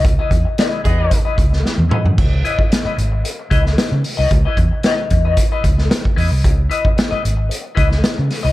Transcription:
<<
  \new Staff \with { instrumentName = "Clean electric guitar" } { \time 4/4 \key cis \minor \tempo 4 = 113 r16 <e' b' dis''>16 r8 <e' b' dis''>8 r16 <e' b' dis''>16 r16 <e' b' dis''>16 r4 <e' b' dis''>16 r16 | r8 <e' b' dis''>16 r8 <e' b' dis''>16 r4 <e' b' dis''>16 r4 <e' b' dis''>16 | r16 <e' b' dis''>16 r8 <e' b' dis''>16 r8 <e' b' dis''>16 r16 <e' b' dis''>16 r4 <e' b' dis''>16 r16 | r8 <e' b' dis''>16 r8 <e' b' dis''>16 r4 <e' b' dis''>16 r4 <e' b' dis''>16 | }
  \new Staff \with { instrumentName = "Horn section" } { \time 4/4 \key cis \minor r4. <b gis' dis''>8. r4. r16 | r1 | r1 | r1 | }
  \new Staff \with { instrumentName = "Fingered electric bass" } { \clef bass \time 4/4 \key cis \minor cis,16 r16 e,16 r8. e,8 r8 cis,8 r16 e,16 r16 fis,16 | cis,8 r4 gis,,8 r8 cis,8 r16 cis16 r16 bis,,16 | cis,16 r16 e,16 r8. e,8 r8 cis,8 r8 e,16 bis,,16 | cis,8 r4 gis,,8 r8 cis,8 r16 cis16 r16 bis,,16 | }
  \new DrumStaff \with { instrumentName = "Drums" } \drummode { \time 4/4 <hh bd>8 <hh bd>8 <hh sn>8 <hh bd>8 <hh bd>8 <hh bd>16 sn16 sn16 tommh16 toml16 tomfh16 | <cymc bd>8 hh16 bd16 <hh sn>8 hh8 hh8 <hh bd>16 sn16 <hh sn>8 hho8 | <hh bd>8 <hh bd>8 <hh sn>8 <hh bd>8 <hh bd>8 <hh bd>16 sn16 <hh sn>16 bd16 hho8 | <hh bd>8 hh16 bd16 <hh sn>8 hh8 hh8 <hh bd>16 sn16 <hh sn>8 <hho sn>8 | }
>>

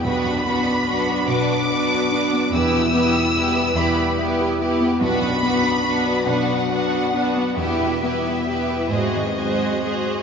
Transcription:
<<
  \new Staff \with { instrumentName = "Violin section" } { \time 6/8 \key b \minor \tempo 4. = 48 b''4. d'''4. | e'''4. b''8 r4 | b''4. fis''4. | e''4. dis''4. | }
  \new Staff \with { instrumentName = "Violin section" } { \time 6/8 \key b \minor <fis' b'>8 <fis' b'>8 <fis' b'>8 <fis' b'>8 <fis' b'>8 <fis' b'>8 | <g' b'>8 <g' b'>8 <g' b'>8 <g' b'>8 <g' b'>8 <g' b'>8 | <fis' b'>8 <fis' b'>8 <fis' b'>8 <fis' b'>8 <fis' b'>8 <fis' b'>8 | <g' b'>8 <g' b'>8 <g' b'>8 <gis' bis'>8 <gis' bis'>8 <gis' bis'>8 | }
  \new Staff \with { instrumentName = "Grand piano" } { \time 6/8 \key b \minor b,,16 fis,16 b16 d'16 fis'16 b'16 d''16 b'16 d''16 fis'16 d'16 b16 | e,16 b,16 b16 e'16 g'16 b'16 e''8 e''16 g'16 e'16 b16 | b,,16 fis,16 b16 d'16 fis'16 b'16 d''16 b'16 d''16 fis'16 d'16 b16 | e,16 b,16 b16 e'16 g'16 b'16 gis,16 dis16 bis16 fis'16 gis'16 bis'16 | }
  \new Staff \with { instrumentName = "Viola section" } { \time 6/8 \key b \minor <b d'>8 <b d'>8 <b d'>8 <b d'>8 <b d'>8 <b d'>8 | <b e'>8 <b e'>8 <b e'>8 <b e'>8 <b e'>8 <b e'>8 | <b d'>8 <b d'>8 <b d'>8 <b d'>8 <b d'>8 <b d'>8 | <b e'>8 <b e'>8 <b e'>8 <gis fis'>8 <gis fis'>8 <gis fis'>8 | }
  \new Staff \with { instrumentName = "French horn section" } { \time 6/8 \key b \minor <fis d'>2. | <g e'>2. | <fis d'>2. | <g b>4. <fis bis>4 r8 | }
  \new Staff \with { instrumentName = "Cello section" } { \clef bass \time 6/8 \key b \minor b,4. b,4. | e,4. e,4. | b,4. b,4. | e,4. gis,4. | }
>>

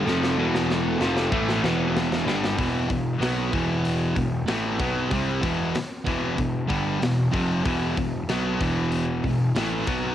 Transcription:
<<
  \new Staff \with { instrumentName = "String section" } { \time 4/4 \key e \minor \tempo 4 = 95 <g e' a'>1 | r1 | r1 | r1 | }
  \new Staff \with { instrumentName = "Distorted electric guitar" } { \clef bass \time 4/4 \key e \minor <f, c f>8 <e, b, e>4 <f, c f>8 <a, e a>8 <e, b, e>4 <g, d g>8 | r1 | r1 | r1 | }
  \new Staff \with { instrumentName = "Distorted electric guitar" } { \clef bass \time 4/4 \key e \minor <f, c f>8 <e, b, e>4 <f, c f>8 <a, e a>8 <e, b, e>4 <g, d g>8 | <e, b, e>8 <e, b,>8 <b, fis b>8 <e, b, e>4 <e, b,>8 <a, e a>8 <b, fis b>8 | <c g c'>8 <e, b, e>8 r8 <e, b, e>8 <e, b,>8 <g, d g>8 <e, b,>8 <f, c f>8 | <e, b, e>8 <e, b,>8 <b, fis b>8 <e, b, e>4 <e, b,>8 <a, e a>8 <b, fis b>8 | }
  \new Staff \with { instrumentName = "Distorted electric guitar" } { \clef bass \time 4/4 \key e \minor <f, c f>8 <e, b, e>4 <f, c f>8 <a, e a>8 <e, b, e>4 <g, d g>8 | <e, b, e>8 <e, b,>8 <b, fis b>8 <e, b, e>4 <e, b,>8 <a, e a>8 <b, fis b>8 | <c g c'>8 <e, b, e>8 r8 <e, b, e>8 <e, b,>8 <g, d g>8 <e, b,>8 <f, c f>8 | <e, b, e>8 <e, b,>8 <b, fis b>8 <e, b, e>4 <e, b,>8 <a, e a>8 <b, fis b>8 | }
  \new Staff \with { instrumentName = "Picked electric bass" } { \clef bass \time 4/4 \key e \minor f,,8 e,,4 f,,8 a,,8 e,,4 g,,8 | e,,8 e,,8 b,,8 e,,4 e,,8 a,,8 b,,8 | c,8 e,,8 r8 e,,8 e,,8 g,,8 e,,8 f,,8 | e,,8 e,,8 b,,8 e,,4 e,,8 a,,8 b,,8 | }
  \new DrumStaff \with { instrumentName = "Drums" } \drummode { \time 4/4 sn16 sn8 sn16 sn8 sn16 sn16 bd16 sn16 sn8 sn16 sn16 sn16 sn16 | <hho bd>8 <hho bd>8 <hho sn>8 <hho bd>8 hho8 <hho bd>8 <hho sn>8 <hho bd>8 | <hho bd>8 <hho bd>8 <hho sn>8 <hho bd>8 <hho bd>8 <hho bd>8 <hho sn>8 <hho bd>8 | <hho bd>8 <hho bd>8 <hho sn>8 <hho bd>8 hho8 <hho bd>8 <hho sn>8 <hho bd>8 | }
>>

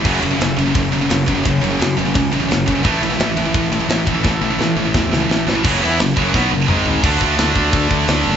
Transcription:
<<
  \new Staff \with { instrumentName = "Distorted electric guitar" } { \clef bass \time 4/4 \key fis \minor \tempo 4 = 172 <fis, cis fis>2.~ <fis, cis fis>8 <fis, cis fis>8 | <fis, cis fis>2.~ <fis, cis fis>8 <fis, cis fis>8 | <a, e a>2.~ <a, e a>8 <a, e a>8 | <a, e a>2.~ <a, e a>8 <a, e a>8 |
<fis, cis fis>8 <e b e'>8 <fis, cis>8 <fis, cis fis>8 <b, fis b>8 <fis, cis>8 <gis, dis gis>4 | <d a d'>4. <d a d'>4. <d a d'>4 | }
  \new Staff \with { instrumentName = "Distorted electric guitar" } { \clef bass \time 4/4 \key fis \minor <fis, cis fis>8 <fis, cis>16 <fis, cis>16 <fis, cis>8 <fis, cis>16 <fis, cis>16 <fis, cis>8 <fis, cis>16 <fis, cis>16 <fis, cis>8 <fis, cis>16 <fis, cis>16 | <fis, cis>8 <fis, cis>16 <fis, cis>16 <fis, cis>8 <fis, cis>16 <fis, cis>16 <fis, cis>8 <fis, cis>16 <fis, cis>16 <fis, cis>8 <fis, cis>16 <fis, cis>16 | <a, e a>8 <a, e>16 <a, e>16 <a, e>8 <a, e>16 <a, e>16 <a, e>8 <a, e>16 <a, e>16 <a, e>8 <a, e>16 <a, e>16 | <a, e>8 <a, e>16 <a, e>16 <a, e>8 <a, e>16 <a, e>16 <a, e>8 <a, e>16 <a, e>16 <a, e>8 <a, e>16 <a, e>16 |
<fis, cis fis>8 <e b e'>8 <fis, cis>8 <fis, cis fis>8 <b, fis b>8 <fis, cis>8 <gis, dis gis>4 | <d a d'>1 | }
  \new Staff \with { instrumentName = "Distorted electric guitar" } { \clef bass \time 4/4 \key fis \minor <fis, cis fis>8 <fis, cis>16 <fis, cis>16 <fis, cis>8 <fis, cis>16 <fis, cis>16 <fis, cis>8 <fis, cis>16 <fis, cis>16 <fis, cis>8 <fis, cis>16 <fis, cis>16 | <fis, cis>8 <fis, cis>16 <fis, cis>16 <fis, cis>8 <fis, cis>16 <fis, cis>16 <fis, cis>8 <fis, cis>16 <fis, cis>16 <fis, cis>8 <fis, cis>16 <fis, cis>16 | <a, e a>8 <a, e>16 <a, e>16 <a, e>8 <a, e>16 <a, e>16 <a, e>8 <a, e>16 <a, e>16 <a, e>8 <a, e>16 <a, e>16 | <a, e>8 <a, e>16 <a, e>16 <a, e>8 <a, e>16 <a, e>16 <a, e>8 <a, e>16 <a, e>16 <a, e>8 <a, e>16 <a, e>16 |
<fis, cis fis>8 <e b e'>8 <fis, cis>8 <fis, cis fis>8 <b, fis b>8 <fis, cis>8 <gis, dis gis>4 | <d a d'>1 | }
  \new Staff \with { instrumentName = "Fingered electric bass" } { \clef bass \time 4/4 \key fis \minor fis,,8 fis,,8 fis,,8 fis,,8 fis,,8 fis,,8 fis,,8 fis,,8 | fis,,8 fis,,8 fis,8 fis,,8 cis,8 a,,8 fis,,8 fis,,8 | a,,8 a,,8 a,,8 a,,8 a,,8 a,,8 a,,8 a,,8 | a,,8 a,,8 a,8 a,,8 e,8 cis,8 a,,8 a,,8 |
fis,,8 e,8 fis,,8 fis,,8 b,,8 fis,,8 gis,,4 | d,8 d,8 d,8 d,8 d,8 d,8 d,8 fis,,8 | }
  \new DrumStaff \with { instrumentName = "Drums" } \drummode { \time 4/4 <cymc bd>8 cymr8 <cymr sn>8 cymr8 <bd cymr>8 cymr8 <cymr sn>8 <bd cymr>8 | <bd cymr>8 cymr8 <cymr sn>8 cymr8 <bd cymr>8 cymr8 <cymr sn>8 <bd cymr>8 | <bd cymr>8 cymr16 sn16 <cymr sn>8 cymr8 <bd cymr>8 cymr8 <cymr sn>8 <bd cymr>8 | <bd sn>4 sn4 <bd sn>8 sn8 sn8 sn8 |
<cymc bd>16 sn8. <hho sn>8 bd8 <bd sn>4 toml8 tomfh8 | <cymc bd>8 bd8 <hho sn>8 bd8 <hho bd>8 bd8 <hho sn>4 | }
>>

